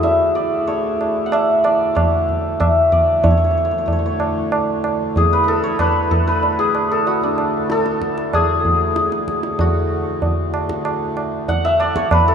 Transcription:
0.00 3.23 D2 medium
0.00 3.23 A2 medium
0.00 2.71 E4 medium
0.00 2.67 F#4 medium
0.00 2.10 G#4 loud
0.00 1.33 E5 loud
0.04 tabla tin medium
0.35 0.73 D5 medium
0.67 1.70 C#5 medium
0.67 tabla tin medium
1.01 tabla na medium
1.26 3.41 F#5 medium
1.32 2.59 E5 medium
1.32 tabla na medium
1.64 2.01 D5 medium
1.64 tabla na medium
1.95 2.98 C#5 medium
1.95 tabla na medium
1.95 tabla ge medium
2.29 tabla ge medium
2.60 4.89 E5 medium
2.60 tabla na medium
2.60 tabla ge medium
2.92 3.29 D5 medium
2.92 tabla ge soft
3.23 12.35 D2 medium
3.23 12.35 A2 medium
3.23 3.30 C#5 medium
3.23 tabla tin loud
3.23 tabla ge loud
3.31 3.37 C#5 medium
3.37 3.44 C#5 medium
3.44 3.50 C#5 medium
3.51 3.57 C#5 medium
3.57 3.64 C#5 medium
3.65 3.71 C#5 medium
3.71 3.78 C#5 soft
3.78 3.85 C#5 medium
3.86 3.92 C#5 soft
3.86 tabla tin medium
3.86 tabla ge medium
3.92 3.98 C#5 medium
3.99 4.05 C#5 medium
4.06 5.63 C#5 medium
4.20 tabla na medium
4.52 tabla na medium
4.84 tabla na medium
5.16 5.54 G#4 medium
5.16 tabla tin medium
5.16 tabla ge medium
5.33 5.44 B4 medium
5.44 5.79 B4 medium
5.48 6.11 A4 loud
5.64 7.29 C#5 medium
5.79 6.27 B4 loud
5.79 tabla na medium
5.79 tabla ge medium
6.11 6.65 A4 medium
6.11 tabla ge medium
6.27 9.02 B4 medium
6.43 tabla tin medium
6.59 6.97 G#4 medium
6.75 tabla na medium
6.91 7.71 A4 medium
7.07 9.60 F#4 medium
7.07 tabla tin medium
7.23 10.97 D4 medium
7.38 tabla na medium
7.70 8.40 A4 loud
7.70 tabla te medium
7.86 tabla te medium
8.02 tabla ke medium
8.18 tabla te medium
8.33 11.38 G#4 loud
8.33 tabla na medium
8.33 tabla ge medium
8.65 tabla ge medium
8.96 tabla te medium
9.12 tabla te medium
9.28 tabla ke medium
9.43 tabla te medium
9.59 12.35 F#4 medium
9.59 tabla tin loud
9.59 tabla ge loud
10.22 tabla tin medium
10.22 tabla ge medium
10.54 tabla na medium
10.69 tabla ke medium
10.85 tabla na medium
11.17 tabla na medium
11.48 12.35 F#5 loud
11.48 tabla tin medium
11.48 tabla ge medium
11.65 12.35 E5 loud
11.80 12.02 D5 loud
11.80 tabla na medium
11.96 12.35 C#5 medium
11.96 tabla ke medium
12.11 12.35 B4 loud
12.11 tabla na medium
12.11 tabla ge medium
12.28 12.35 A4 loud

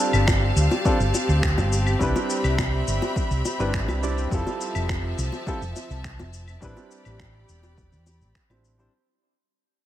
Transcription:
0.00 0.81 G3 medium
0.00 0.81 C4 medium
0.00 8.89 C4 medium
0.00 0.82 D4 medium
0.00 0.82 F4 medium
0.00 4.28 G4 medium
0.00 0.83 A4 medium
0.00 1.99 F5 medium
0.00 1.99 A5 medium
0.13 0.50 G1 medium
0.13 claves medium
0.13 shaker soft
0.28 finger snap medium
0.28 kick loud
0.28 high bongo medium
0.28 shaker soft
0.56 0.67 D2 medium
0.56 shaker medium
0.71 high bongo medium
0.71 shaker soft
0.85 0.97 G3 medium
0.85 0.97 C4 medium
0.85 0.97 D4 medium
0.85 0.97 F4 medium
0.85 0.97 A4 medium
0.85 kick loud
0.85 shaker soft
1.00 1.10 G1 medium
1.00 shaker soft
1.14 high bongo medium
1.14 shaker medium
1.29 1.59 D2 medium
1.29 shaker soft
1.43 finger snap loud
1.43 kick medium
1.43 shaker soft
1.58 1.94 G1 loud
1.58 high bongo medium
1.58 shaker soft
1.73 shaker medium
1.87 claves medium
1.87 shaker soft
1.99 2.11 C2 medium
1.99 3.41 G3 medium
1.99 3.41 C4 medium
1.99 3.42 D4 medium
1.99 3.42 E4 medium
1.99 3.43 B4 medium
1.99 4.29 E5 medium
1.99 4.29 B5 medium
1.99 kick loud
1.99 shaker soft
2.16 high bongo medium
2.16 shaker soft
2.30 shaker medium
2.44 2.81 C2 medium
2.44 claves medium
2.44 shaker soft
2.58 finger snap medium
2.58 kick medium
2.58 high bongo medium
2.58 shaker soft
2.87 2.98 G1 medium
2.87 shaker medium
3.02 high bongo medium
3.02 shaker soft
3.16 kick medium
3.16 shaker soft
3.31 3.41 C2 medium
3.31 shaker soft
3.45 high bongo medium
3.45 shaker medium
3.59 3.89 G1 medium
3.59 3.99 G3 medium
3.59 3.99 C4 medium
3.59 3.99 D4 medium
3.59 4.00 E4 medium
3.59 4.00 B4 medium
3.59 shaker soft
3.74 finger snap medium
3.74 kick loud
3.74 shaker soft
3.88 4.25 C2 medium
3.88 high bongo medium
3.88 claves medium
3.88 shaker soft
4.02 4.28 G3 medium
4.02 4.28 C4 medium
4.02 4.28 D4 medium
4.02 4.28 E4 medium
4.02 4.29 D5 loud
4.02 shaker medium
4.18 shaker soft
4.30 4.42 F1 medium
4.30 6.60 F3 medium
4.30 5.43 G3 medium
4.30 5.43 C4 medium
4.30 5.44 E4 medium
4.30 5.44 F4 medium
4.30 5.45 A4 medium
4.30 6.60 E5 medium
4.30 6.60 A5 medium
4.30 kick loud
4.30 shaker soft
4.47 high bongo medium
4.47 shaker soft
4.61 shaker medium
4.75 5.12 F1 medium
4.75 claves medium
4.75 shaker soft
4.89 finger snap medium
4.89 kick loud
4.89 high bongo medium
4.89 shaker soft
5.18 5.28 C2 medium
5.18 shaker medium
5.32 high bongo medium
5.32 shaker soft
5.46 5.58 G3 medium
5.46 5.58 C4 medium
5.46 5.59 E4 medium
5.46 5.59 F4 medium
5.46 5.59 A4 loud
5.46 kick loud
5.46 shaker soft
5.62 5.72 F1 medium
5.62 shaker soft
5.76 high bongo medium
5.76 shaker medium
5.90 6.20 C2 medium
5.90 shaker soft
6.04 finger snap medium
6.04 kick loud
6.04 shaker soft
6.19 6.56 F1 medium
6.19 high bongo medium
6.19 shaker soft
6.34 shaker medium
6.48 claves soft
6.48 shaker soft
6.61 6.73 A1 medium
6.61 8.02 G3 medium
6.61 8.03 C4 medium
6.61 8.03 D4 medium
6.61 8.04 E4 medium
6.61 8.90 G4 medium
6.61 8.04 B4 medium
6.61 8.91 D5 medium
6.61 8.91 B5 medium
6.61 kick loud
6.61 shaker soft
6.77 high bongo medium
6.77 shaker soft
6.91 shaker medium
7.05 7.42 A1 medium
7.05 claves medium
7.05 shaker soft
7.20 finger snap medium
7.20 kick medium
7.20 high bongo medium
7.20 shaker soft
7.49 7.94 E1 medium
7.49 shaker medium
7.63 high bongo medium
7.63 shaker soft
7.78 kick medium
7.78 shaker soft
7.92 8.22 E2 medium
7.92 shaker soft
8.06 high bongo medium
8.06 shaker medium
8.21 8.31 A1 medium
8.21 shaker soft
8.35 finger snap medium
8.35 kick medium
8.35 shaker soft
8.49 8.86 A1 medium
8.49 8.75 G3 medium
8.49 8.75 C4 medium
8.49 8.75 D4 medium
8.49 8.75 E4 medium
8.49 8.76 C5 medium
8.49 high bongo medium
8.49 claves soft
8.49 shaker soft
8.65 shaker medium
8.78 8.89 G3 medium
8.78 8.89 C4 medium
8.78 8.90 D4 medium
8.78 8.90 E4 medium
8.78 8.90 C5 medium
8.78 shaker soft

